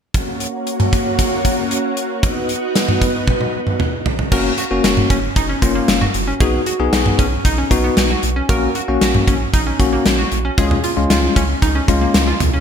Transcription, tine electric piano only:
4.32 A#3 C#4 F#4
4.71 A#3 C#4 F#4
5.62 A#3 C#4 F4
6.41 B3 D#4 F#4
6.80 B3 D#4 G#4
7.71 B3 D#4 F#4
8.49 A#3 C#4 F#4
8.88 A#3 C#4 F#4
9.80 A#3 C#4 F#4
10.58 G#3 C#4 F4
10.97 G#3 C#4 F4
11.88 G#3 C#4 F4

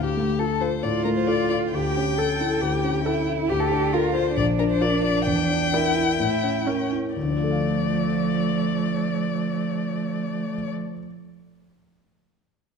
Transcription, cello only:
0.83 F4
1.74 G4
2.18 A4
2.61 G4
3.05 E4
3.50 G4
3.93 F4
4.37 D4
5.74 E4
6.19 E4
6.66 C#4
7.16 F3

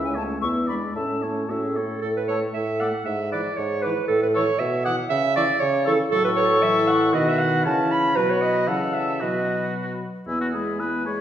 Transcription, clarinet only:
Already playing: E4
0.16 C#4
0.42 E4
0.68 D4
0.95 E4
1.22 C#4
1.48 F#4
1.63 G#4
1.75 A4
2.01 A4
2.17 B4
2.28 C#5
2.54 E5
2.80 F#5
3.06 E5
3.32 D5
3.57 C#5
3.83 B4
4.08 A4
4.23 B4
4.35 C#5
4.59 E5
4.85 F#5
5.10 E5
5.36 D5
5.60 C#5
5.87 A4
6.11 A4
6.25 B4
6.36 C#5
6.63 E5
6.88 F#5
7.14 D#5
7.28 E5
7.39 F#5
7.66 A5
7.91 B5
8.16 B4
8.30 C#5
8.41 D#5
8.68 F#5
8.94 E5
9.22 D#5
10.27 E4
10.54 G#4
10.80 E4
11.05 G#4

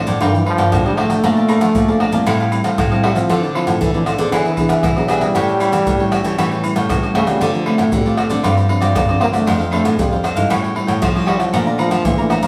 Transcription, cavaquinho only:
0.06 A4 C5 D5
0.20 F4 A#4 D5 G5
0.34 A#4 D5 G5
0.46 muted cavaquinho stroke
0.57 A#4 D5 G5
0.84 A#4 D5 G5
0.97 F4 A#4 D5 G5
1.09 A#4 D5 G5
1.23 A#4 D5 F5 A5
1.37 D5 F5 A5
1.49 A#4 D5 F5 A5
1.61 muted cavaquinho stroke
1.88 D5 F5 A5
2.01 A#4 D5 F5 A5
2.13 D5 F5 A5
2.26 E4 A4 C5 F5
2.40 A4 C5 F5
2.52 muted cavaquinho stroke
2.64 A4 C5 F5
2.91 A4 C5 F5
3.03 E4 A4 C5 F5
3.16 A4 C5 F5
3.30 F4 A4 C5 D5
3.44 A4 C5 D5
3.55 F4 A4 C5 D5
3.68 muted cavaquinho stroke
3.95 A4 C5 D5
4.07 F4 A4 C5 D5
4.19 A4 C5 D5
4.33 D4 G#4 B4 E5
4.46 G#4 B4 E5
4.59 muted cavaquinho stroke
4.71 G#4 B4 E5
4.98 G#4 B4 E5
5.10 D4 G#4 B4 E5
5.22 G#4 B4 E5
5.35 G4 A4 C#5 G5
5.48 A4 C#5 G5
5.60 G4 A4 C#5 G5
5.72 muted cavaquinho stroke
6.00 A4 C#5 G5
6.12 G4 A4 C#5 G5
6.24 A4 C#5 G5
6.38 G4 A4 C#5 G5
6.51 A4 C#5 G5
6.63 muted cavaquinho stroke
6.76 A4 C#5 G5
7.03 A4 C#5 G5
7.15 G4 A4 C#5 G5
7.27 A4 C#5 G5
7.41 F4 A4 C5 D5
7.55 A4 C5
7.66 F4 A4 C5 D5
7.79 muted cavaquinho stroke
8.06 A4 C5 D5
8.17 F4 A4 C5 D5
8.29 A4 C5 D5
8.43 F4 G4 C5 D5
8.56 G4 C5 D5
8.68 muted cavaquinho stroke
8.80 G4 C5 D5
9.08 G4 C5 D5
9.20 F4 G4 C5 D5
9.32 G4 C5 D5
9.46 D4 A4 C5 F5
9.59 A4 C5 F5
9.71 D4 A4 C5 F5
9.84 muted cavaquinho stroke
10.11 A4 C5 F5
10.23 D4 A4 C5 F5
10.35 A4 C5 F5
10.50 G4 A4 C#5 G5
10.63 A4 C#5 G5
10.75 muted cavaquinho stroke
10.87 A4 C#5 G5
11.14 A4 C#5 G5
11.26 G4 A4 C#5 G5
11.39 A4 C#5 G5
11.53 A4 D5 F5 A#5
11.66 D5 F5 A#5
11.78 A4 D5 F5 A#5
11.90 muted cavaquinho stroke
12.18 D5 F5 A#5
12.30 A4 D5 F5 A#5
12.42 D5 F5 A#5

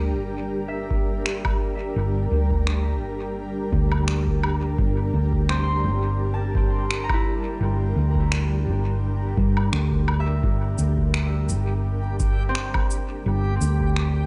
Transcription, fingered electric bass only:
Already playing: D2
0.20 G1
1.96 G1
2.31 D2
3.02 G1
3.72 D2
4.78 G1
5.14 D2
5.84 G1
7.61 G1
7.96 D2
8.67 G1
9.37 G2
9.72 D2
10.43 G1
10.79 D2
11.49 G1
13.26 G1
13.61 D2

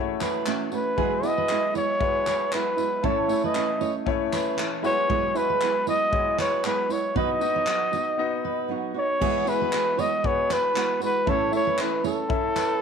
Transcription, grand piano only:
Already playing: A3 E4 F#4 C#5 D#5
0.97 G#3 E4 F#4 B4
1.23 G#3 E4 F#4 B4
1.99 G#3 E4 F#4 B4
3.03 A3 C#4 E4 C#5
3.28 A3 C#4 E4 C#5
4.06 A3 C#4 E4 C#5
4.83 G#3 E4 F#4 B4
5.34 G#3 E4 F#4 B4
6.11 G#3 E4 F#4 C#5
7.15 B3 D#4 F#4 D#5
7.40 B3 D#4 F#4 D#5
8.18 B3 D#4 F#4 D#5
9.20 B3 F#4 G#4 E5
9.46 B3 F#4 G#4 E5
10.23 B3 F#4 G#4 B4
11.26 C#4 E4 A4 E5
11.51 C#4 E4 A4 E5
12.29 C#4 E4 A4 E5

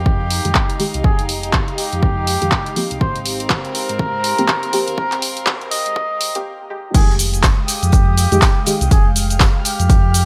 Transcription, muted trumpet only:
Already playing: G4
1.04 G#4
1.78 G4
3.01 C5
3.75 A#4
4.98 A#4
5.72 D#5
6.95 G#4
7.68 G4
8.91 G#4
9.65 G4

